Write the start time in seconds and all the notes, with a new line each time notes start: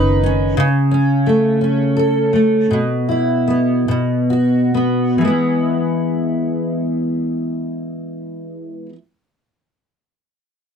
Already playing: F#1 D#3 C#4 D#4 B4
0.23 C#4
0.57 C#3
0.91 C#4
1.26 A3
1.61 C#4
1.97 A4
2.33 A3
2.71 B2
3.09 E4
3.48 B3
3.88 B2
4.30 F#4
4.74 B3
5.18 E3 G#3
5.25 B3 E4